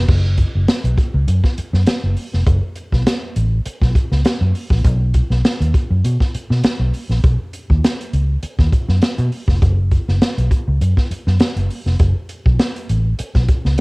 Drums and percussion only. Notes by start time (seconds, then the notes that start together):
0.08 kick, crash
0.37 kick, closed hi-hat
0.68 snare, closed hi-hat
0.85 closed hi-hat
0.98 kick, closed hi-hat
1.28 closed hi-hat
1.44 kick, snare
1.58 closed hi-hat
1.74 snare
1.87 snare, closed hi-hat
2.17 open hi-hat
2.34 snare
2.47 kick, closed hi-hat
2.76 closed hi-hat
2.93 kick, snare
3.07 snare, closed hi-hat
3.36 closed hi-hat
3.66 closed hi-hat
3.82 kick, snare
3.95 kick, closed hi-hat
4.12 snare
4.25 snare, closed hi-hat
4.55 open hi-hat
4.70 kick, snare
4.85 kick, closed hi-hat
5.14 kick, closed hi-hat
5.31 snare
5.45 snare, closed hi-hat
5.62 closed hi-hat
5.74 kick, closed hi-hat
6.04 closed hi-hat
6.20 kick, snare
6.34 closed hi-hat
6.51 snare
6.63 snare, closed hi-hat
6.93 open hi-hat
7.10 snare
7.24 kick, closed hi-hat
7.53 closed hi-hat
7.70 kick
7.84 snare, closed hi-hat
8.01 closed hi-hat
8.13 closed hi-hat
8.43 closed hi-hat
8.59 kick, snare
8.73 kick, closed hi-hat
8.89 snare
9.02 snare, closed hi-hat
9.18 closed hi-hat
9.32 open hi-hat
9.48 kick, snare
9.62 kick, closed hi-hat
9.91 kick, closed hi-hat
10.08 snare
10.22 snare, closed hi-hat
10.38 closed hi-hat
10.51 kick, closed hi-hat
10.81 closed hi-hat
10.97 kick, snare
11.11 closed hi-hat
11.27 snare
11.39 snare, closed hi-hat
11.56 closed hi-hat
11.70 open hi-hat
11.86 snare
11.99 kick, closed hi-hat
12.29 closed hi-hat
12.46 kick
12.59 snare, closed hi-hat
12.76 closed hi-hat
12.89 closed hi-hat
13.19 closed hi-hat
13.35 kick, snare
13.48 kick, closed hi-hat
13.65 snare